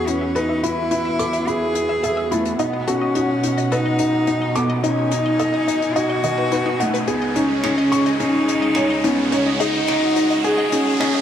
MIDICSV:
0, 0, Header, 1, 7, 480
1, 0, Start_track
1, 0, Tempo, 560748
1, 301, Time_signature, 4, 2, 24, 8
1, 9599, End_track
2, 0, Start_track
2, 0, Title_t, "Synth arpeggio sound"
2, 0, Program_c, 0, 84
2, 61, Note_on_c, 0, 64, 75
2, 91, Note_off_c, 0, 64, 0
2, 182, Note_on_c, 0, 76, 75
2, 230, Note_off_c, 0, 76, 0
2, 301, Note_on_c, 0, 69, 81
2, 374, Note_off_c, 0, 69, 0
2, 421, Note_on_c, 0, 76, 74
2, 470, Note_off_c, 0, 76, 0
2, 542, Note_on_c, 0, 64, 72
2, 590, Note_off_c, 0, 64, 0
2, 780, Note_on_c, 0, 64, 80
2, 810, Note_off_c, 0, 64, 0
2, 901, Note_on_c, 0, 76, 78
2, 950, Note_off_c, 0, 76, 0
2, 1023, Note_on_c, 0, 69, 70
2, 1095, Note_off_c, 0, 69, 0
2, 1140, Note_on_c, 0, 76, 75
2, 1189, Note_off_c, 0, 76, 0
2, 1260, Note_on_c, 0, 64, 73
2, 1309, Note_off_c, 0, 64, 0
2, 1500, Note_on_c, 0, 64, 69
2, 1530, Note_off_c, 0, 64, 0
2, 1619, Note_on_c, 0, 76, 76
2, 1669, Note_off_c, 0, 76, 0
2, 1739, Note_on_c, 0, 69, 77
2, 1813, Note_off_c, 0, 69, 0
2, 1859, Note_on_c, 0, 76, 72
2, 1909, Note_off_c, 0, 76, 0
2, 1979, Note_on_c, 0, 64, 73
2, 2029, Note_off_c, 0, 64, 0
2, 2219, Note_on_c, 0, 63, 83
2, 2249, Note_off_c, 0, 63, 0
2, 2340, Note_on_c, 0, 75, 76
2, 2389, Note_off_c, 0, 75, 0
2, 2461, Note_on_c, 0, 69, 73
2, 2534, Note_off_c, 0, 69, 0
2, 2580, Note_on_c, 0, 75, 72
2, 2629, Note_off_c, 0, 75, 0
2, 2700, Note_on_c, 0, 63, 73
2, 2749, Note_off_c, 0, 63, 0
2, 2941, Note_on_c, 0, 63, 73
2, 2970, Note_off_c, 0, 63, 0
2, 3061, Note_on_c, 0, 75, 77
2, 3110, Note_off_c, 0, 75, 0
2, 3182, Note_on_c, 0, 69, 73
2, 3254, Note_off_c, 0, 69, 0
2, 3302, Note_on_c, 0, 75, 72
2, 3350, Note_off_c, 0, 75, 0
2, 3421, Note_on_c, 0, 63, 73
2, 3470, Note_off_c, 0, 63, 0
2, 3661, Note_on_c, 0, 63, 79
2, 3690, Note_off_c, 0, 63, 0
2, 3780, Note_on_c, 0, 75, 69
2, 3829, Note_off_c, 0, 75, 0
2, 3900, Note_on_c, 0, 69, 76
2, 3973, Note_off_c, 0, 69, 0
2, 4020, Note_on_c, 0, 75, 77
2, 4069, Note_off_c, 0, 75, 0
2, 4139, Note_on_c, 0, 63, 77
2, 4189, Note_off_c, 0, 63, 0
2, 4380, Note_on_c, 0, 63, 73
2, 4410, Note_off_c, 0, 63, 0
2, 4500, Note_on_c, 0, 75, 75
2, 4549, Note_off_c, 0, 75, 0
2, 4618, Note_on_c, 0, 69, 80
2, 4692, Note_off_c, 0, 69, 0
2, 4739, Note_on_c, 0, 75, 79
2, 4789, Note_off_c, 0, 75, 0
2, 4858, Note_on_c, 0, 63, 72
2, 4908, Note_off_c, 0, 63, 0
2, 5100, Note_on_c, 0, 63, 71
2, 5130, Note_off_c, 0, 63, 0
2, 5219, Note_on_c, 0, 75, 79
2, 5269, Note_off_c, 0, 75, 0
2, 5337, Note_on_c, 0, 51, 69
2, 5388, Note_off_c, 0, 51, 0
2, 5458, Note_on_c, 0, 71, 72
2, 5508, Note_off_c, 0, 71, 0
2, 5579, Note_on_c, 0, 63, 76
2, 5629, Note_off_c, 0, 63, 0
2, 5698, Note_on_c, 0, 63, 95
2, 5748, Note_off_c, 0, 63, 0
2, 5819, Note_on_c, 0, 63, 75
2, 5869, Note_off_c, 0, 63, 0
2, 5939, Note_on_c, 0, 71, 80
2, 6013, Note_off_c, 0, 71, 0
2, 6058, Note_on_c, 0, 68, 82
2, 6132, Note_off_c, 0, 68, 0
2, 6178, Note_on_c, 0, 75, 73
2, 6228, Note_off_c, 0, 75, 0
2, 6299, Note_on_c, 0, 63, 77
2, 6349, Note_off_c, 0, 63, 0
2, 6539, Note_on_c, 0, 63, 80
2, 6569, Note_off_c, 0, 63, 0
2, 6658, Note_on_c, 0, 75, 84
2, 6708, Note_off_c, 0, 75, 0
2, 6779, Note_on_c, 0, 68, 72
2, 6853, Note_off_c, 0, 68, 0
2, 6899, Note_on_c, 0, 75, 77
2, 6949, Note_off_c, 0, 75, 0
2, 7018, Note_on_c, 0, 63, 75
2, 7068, Note_off_c, 0, 63, 0
2, 7260, Note_on_c, 0, 63, 74
2, 7290, Note_off_c, 0, 63, 0
2, 7379, Note_on_c, 0, 75, 77
2, 7429, Note_off_c, 0, 75, 0
2, 7499, Note_on_c, 0, 68, 78
2, 7573, Note_off_c, 0, 68, 0
2, 7620, Note_on_c, 0, 75, 76
2, 7669, Note_off_c, 0, 75, 0
2, 7739, Note_on_c, 0, 63, 77
2, 7789, Note_off_c, 0, 63, 0
2, 7979, Note_on_c, 0, 63, 80
2, 8010, Note_off_c, 0, 63, 0
2, 8101, Note_on_c, 0, 75, 75
2, 8150, Note_off_c, 0, 75, 0
2, 8220, Note_on_c, 0, 68, 80
2, 8293, Note_off_c, 0, 68, 0
2, 8339, Note_on_c, 0, 75, 74
2, 8389, Note_off_c, 0, 75, 0
2, 8461, Note_on_c, 0, 63, 77
2, 8510, Note_off_c, 0, 63, 0
2, 8700, Note_on_c, 0, 63, 74
2, 8730, Note_off_c, 0, 63, 0
2, 8820, Note_on_c, 0, 75, 80
2, 8869, Note_off_c, 0, 75, 0
2, 8940, Note_on_c, 0, 68, 77
2, 9014, Note_off_c, 0, 68, 0
2, 9059, Note_on_c, 0, 75, 78
2, 9109, Note_off_c, 0, 75, 0
2, 9180, Note_on_c, 0, 63, 74
2, 9229, Note_off_c, 0, 63, 0
2, 9419, Note_on_c, 0, 63, 81
2, 9449, Note_off_c, 0, 63, 0
2, 9541, Note_on_c, 0, 75, 71
2, 9590, Note_off_c, 0, 75, 0
2, 9599, End_track
3, 0, Start_track
3, 0, Title_t, "Felt piano"
3, 0, Program_c, 1, 0
3, 0, Control_c, 1, 64, 127
3, 0, Note_on_c, 1, 64, 65
3, 0, Note_on_c, 1, 66, 70
3, 0, Note_on_c, 1, 76, 69
3, 305, Note_on_c, 1, 71, 72
3, 531, Note_off_c, 1, 71, 0
3, 543, Note_off_c, 1, 64, 0
3, 543, Note_on_c, 1, 64, 71
3, 768, Note_off_c, 1, 64, 0
3, 781, Note_on_c, 1, 64, 65
3, 918, Note_off_c, 1, 64, 0
3, 1022, Note_on_c, 1, 86, 89
3, 1250, Note_off_c, 1, 86, 0
3, 1262, Note_on_c, 1, 64, 73
3, 1490, Note_off_c, 1, 64, 0
3, 1743, Note_off_c, 1, 76, 0
3, 1743, Note_on_c, 1, 76, 68
3, 1970, Note_off_c, 1, 76, 0
3, 1983, Note_on_c, 1, 64, 75
3, 2210, Note_off_c, 1, 64, 0
3, 2221, Note_on_c, 1, 75, 73
3, 2232, Note_off_c, 1, 66, 0
3, 2232, Control_c, 1, 64, 0
3, 2358, Note_off_c, 1, 75, 0
3, 2379, Control_c, 1, 64, 127
3, 2462, Note_on_c, 1, 66, 93
3, 2687, Note_off_c, 1, 66, 0
3, 2700, Note_on_c, 1, 66, 66
3, 2929, Note_off_c, 1, 66, 0
3, 3181, Note_on_c, 1, 71, 72
3, 3409, Note_off_c, 1, 71, 0
3, 3420, Note_on_c, 1, 63, 71
3, 3647, Note_off_c, 1, 63, 0
3, 3660, Note_on_c, 1, 63, 74
3, 3797, Note_off_c, 1, 63, 0
3, 3899, Note_on_c, 1, 86, 98
3, 4128, Note_off_c, 1, 86, 0
3, 4140, Note_on_c, 1, 63, 73
3, 4369, Note_off_c, 1, 63, 0
3, 4619, Note_on_c, 1, 75, 65
3, 4848, Note_off_c, 1, 75, 0
3, 4861, Note_on_c, 1, 63, 73
3, 5089, Note_off_c, 1, 63, 0
3, 5102, Note_on_c, 1, 75, 73
3, 5238, Note_off_c, 1, 75, 0
3, 5341, Note_on_c, 1, 75, 68
3, 5569, Note_off_c, 1, 75, 0
3, 5583, Note_on_c, 1, 71, 71
3, 5810, Note_off_c, 1, 71, 0
3, 5820, Note_on_c, 1, 78, 74
3, 6049, Note_off_c, 1, 78, 0
3, 6058, Note_on_c, 1, 68, 74
3, 6071, Control_c, 1, 64, 0
3, 6236, Control_c, 1, 64, 127
3, 6288, Note_off_c, 1, 68, 0
3, 6300, Note_on_c, 1, 61, 73
3, 6527, Note_off_c, 1, 61, 0
3, 6539, Note_on_c, 1, 61, 74
3, 6677, Note_off_c, 1, 61, 0
3, 6777, Note_on_c, 1, 85, 97
3, 7007, Note_off_c, 1, 85, 0
3, 7019, Note_on_c, 1, 61, 70
3, 7248, Note_off_c, 1, 61, 0
3, 7499, Note_on_c, 1, 73, 75
3, 7728, Note_off_c, 1, 73, 0
3, 7739, Note_on_c, 1, 61, 75
3, 7968, Note_off_c, 1, 61, 0
3, 7978, Note_on_c, 1, 73, 77
3, 8116, Note_off_c, 1, 73, 0
3, 8218, Note_on_c, 1, 63, 103
3, 8446, Note_off_c, 1, 63, 0
3, 8459, Note_on_c, 1, 63, 69
3, 8688, Note_off_c, 1, 63, 0
3, 8940, Note_on_c, 1, 68, 75
3, 9169, Note_off_c, 1, 68, 0
3, 9177, Note_on_c, 1, 61, 73
3, 9403, Note_off_c, 1, 61, 0
3, 9416, Note_on_c, 1, 61, 77
3, 9555, Note_off_c, 1, 61, 0
3, 9599, End_track
4, 0, Start_track
4, 0, Title_t, "Cello"
4, 0, Program_c, 2, 42
4, 69, Note_on_c, 2, 61, 93
4, 310, Note_on_c, 2, 63, 88
4, 323, Note_off_c, 2, 61, 0
4, 547, Note_on_c, 2, 64, 106
4, 560, Note_off_c, 2, 63, 0
4, 1266, Note_on_c, 2, 68, 110
4, 1279, Note_off_c, 2, 64, 0
4, 1985, Note_on_c, 2, 57, 92
4, 1998, Note_off_c, 2, 68, 0
4, 2223, Note_off_c, 2, 57, 0
4, 2229, Note_on_c, 2, 59, 91
4, 2469, Note_on_c, 2, 61, 103
4, 2482, Note_off_c, 2, 59, 0
4, 3185, Note_on_c, 2, 63, 94
4, 3198, Note_off_c, 2, 61, 0
4, 3907, Note_on_c, 2, 59, 87
4, 3919, Note_off_c, 2, 63, 0
4, 4144, Note_off_c, 2, 59, 0
4, 4147, Note_on_c, 2, 61, 87
4, 4389, Note_on_c, 2, 63, 106
4, 4402, Note_off_c, 2, 61, 0
4, 5105, Note_on_c, 2, 66, 106
4, 5118, Note_off_c, 2, 63, 0
4, 5828, Note_on_c, 2, 57, 87
4, 5840, Note_off_c, 2, 66, 0
4, 6066, Note_on_c, 2, 59, 86
4, 6078, Note_off_c, 2, 57, 0
4, 6308, Note_on_c, 2, 61, 96
4, 6321, Note_off_c, 2, 59, 0
4, 7023, Note_off_c, 2, 61, 0
4, 7028, Note_on_c, 2, 63, 96
4, 7749, Note_on_c, 2, 59, 89
4, 7762, Note_off_c, 2, 63, 0
4, 7986, Note_on_c, 2, 61, 88
4, 7999, Note_off_c, 2, 59, 0
4, 8232, Note_on_c, 2, 63, 102
4, 8244, Note_off_c, 2, 61, 0
4, 8941, Note_off_c, 2, 63, 0
4, 8947, Note_on_c, 2, 68, 105
4, 9599, Note_off_c, 2, 68, 0
4, 9599, End_track
5, 0, Start_track
5, 0, Title_t, "String section"
5, 0, Program_c, 3, 48
5, 0, Note_on_c, 3, 40, 65
5, 0, Note_on_c, 3, 52, 58
5, 0, Note_on_c, 3, 59, 61
5, 0, Note_on_c, 3, 66, 58
5, 0, Note_on_c, 3, 71, 69
5, 2188, Note_off_c, 3, 52, 0
5, 2190, Note_off_c, 3, 40, 0
5, 2190, Note_off_c, 3, 71, 0
5, 2220, Note_on_c, 3, 63, 64
5, 2221, Note_on_c, 3, 47, 70
5, 2221, Note_on_c, 3, 78, 74
5, 4122, Note_off_c, 3, 78, 0
5, 4143, Note_on_c, 3, 80, 73
5, 6027, Note_off_c, 3, 47, 0
5, 6028, Note_off_c, 3, 59, 0
5, 6029, Note_off_c, 3, 66, 0
5, 6043, Note_off_c, 3, 80, 0
5, 6062, Note_on_c, 3, 49, 67
5, 6063, Note_on_c, 3, 56, 65
5, 6064, Note_on_c, 3, 68, 77
5, 6066, Note_on_c, 3, 37, 72
5, 7964, Note_off_c, 3, 68, 0
5, 7987, Note_on_c, 3, 66, 82
5, 9599, Note_off_c, 3, 37, 0
5, 9599, Note_off_c, 3, 49, 0
5, 9599, Note_off_c, 3, 56, 0
5, 9599, Note_off_c, 3, 63, 0
5, 9599, Note_off_c, 3, 66, 0
5, 9599, End_track
6, 0, Start_track
6, 0, Title_t, "Riser"
6, 0, Program_c, 4, 103
6, 0, Note_on_c, 4, 60, 68
6, 9599, Note_off_c, 4, 60, 0
6, 9599, End_track
7, 0, Start_track
7, 0, Title_t, "Drums"
7, 62, Note_on_c, 9, 42, 69
7, 148, Note_off_c, 9, 42, 0
7, 303, Note_on_c, 9, 42, 47
7, 389, Note_off_c, 9, 42, 0
7, 543, Note_on_c, 9, 42, 63
7, 629, Note_off_c, 9, 42, 0
7, 777, Note_on_c, 9, 42, 52
7, 863, Note_off_c, 9, 42, 0
7, 1020, Note_on_c, 9, 42, 67
7, 1105, Note_off_c, 9, 42, 0
7, 1137, Note_on_c, 9, 42, 44
7, 1223, Note_off_c, 9, 42, 0
7, 1261, Note_on_c, 9, 42, 47
7, 1347, Note_off_c, 9, 42, 0
7, 1499, Note_on_c, 9, 42, 66
7, 1584, Note_off_c, 9, 42, 0
7, 1741, Note_on_c, 9, 42, 58
7, 1826, Note_off_c, 9, 42, 0
7, 1981, Note_on_c, 9, 42, 70
7, 2067, Note_off_c, 9, 42, 0
7, 2098, Note_on_c, 9, 42, 44
7, 2184, Note_off_c, 9, 42, 0
7, 2216, Note_on_c, 9, 42, 54
7, 2302, Note_off_c, 9, 42, 0
7, 2460, Note_on_c, 9, 42, 62
7, 2545, Note_off_c, 9, 42, 0
7, 2696, Note_on_c, 9, 42, 52
7, 2781, Note_off_c, 9, 42, 0
7, 2938, Note_on_c, 9, 42, 75
7, 3023, Note_off_c, 9, 42, 0
7, 3061, Note_on_c, 9, 42, 38
7, 3147, Note_off_c, 9, 42, 0
7, 3181, Note_on_c, 9, 42, 52
7, 3267, Note_off_c, 9, 42, 0
7, 3410, Note_on_c, 9, 42, 61
7, 3496, Note_off_c, 9, 42, 0
7, 3655, Note_on_c, 9, 42, 58
7, 3741, Note_off_c, 9, 42, 0
7, 3897, Note_on_c, 9, 42, 69
7, 3983, Note_off_c, 9, 42, 0
7, 4139, Note_on_c, 9, 42, 54
7, 4224, Note_off_c, 9, 42, 0
7, 4376, Note_on_c, 9, 42, 72
7, 4461, Note_off_c, 9, 42, 0
7, 4615, Note_on_c, 9, 42, 49
7, 4700, Note_off_c, 9, 42, 0
7, 4862, Note_on_c, 9, 42, 70
7, 4948, Note_off_c, 9, 42, 0
7, 4982, Note_on_c, 9, 42, 45
7, 5068, Note_off_c, 9, 42, 0
7, 5099, Note_on_c, 9, 42, 51
7, 5184, Note_off_c, 9, 42, 0
7, 5335, Note_on_c, 9, 42, 70
7, 5421, Note_off_c, 9, 42, 0
7, 5576, Note_on_c, 9, 42, 58
7, 5661, Note_off_c, 9, 42, 0
7, 5821, Note_on_c, 9, 42, 63
7, 5907, Note_off_c, 9, 42, 0
7, 5944, Note_on_c, 9, 42, 46
7, 6029, Note_off_c, 9, 42, 0
7, 6054, Note_on_c, 9, 42, 50
7, 6140, Note_off_c, 9, 42, 0
7, 6296, Note_on_c, 9, 42, 66
7, 6381, Note_off_c, 9, 42, 0
7, 6537, Note_on_c, 9, 26, 97
7, 6541, Note_on_c, 9, 42, 58
7, 6622, Note_off_c, 9, 26, 0
7, 6626, Note_off_c, 9, 42, 0
7, 6781, Note_on_c, 9, 42, 77
7, 6867, Note_off_c, 9, 42, 0
7, 6899, Note_on_c, 9, 42, 39
7, 6985, Note_off_c, 9, 42, 0
7, 7018, Note_on_c, 9, 42, 48
7, 7103, Note_off_c, 9, 42, 0
7, 7262, Note_on_c, 9, 42, 64
7, 7347, Note_off_c, 9, 42, 0
7, 7488, Note_on_c, 9, 26, 89
7, 7497, Note_on_c, 9, 42, 58
7, 7574, Note_off_c, 9, 26, 0
7, 7583, Note_off_c, 9, 42, 0
7, 7737, Note_on_c, 9, 42, 67
7, 7823, Note_off_c, 9, 42, 0
7, 7978, Note_on_c, 9, 42, 54
7, 8063, Note_off_c, 9, 42, 0
7, 8218, Note_on_c, 9, 42, 69
7, 8304, Note_off_c, 9, 42, 0
7, 8451, Note_on_c, 9, 42, 52
7, 8461, Note_on_c, 9, 26, 90
7, 8536, Note_off_c, 9, 42, 0
7, 8547, Note_off_c, 9, 26, 0
7, 8697, Note_on_c, 9, 42, 65
7, 8783, Note_off_c, 9, 42, 0
7, 8818, Note_on_c, 9, 42, 41
7, 8903, Note_off_c, 9, 42, 0
7, 8937, Note_on_c, 9, 42, 46
7, 9023, Note_off_c, 9, 42, 0
7, 9177, Note_on_c, 9, 42, 69
7, 9263, Note_off_c, 9, 42, 0
7, 9421, Note_on_c, 9, 26, 90
7, 9425, Note_on_c, 9, 42, 59
7, 9507, Note_off_c, 9, 26, 0
7, 9511, Note_off_c, 9, 42, 0
7, 9599, End_track
0, 0, End_of_file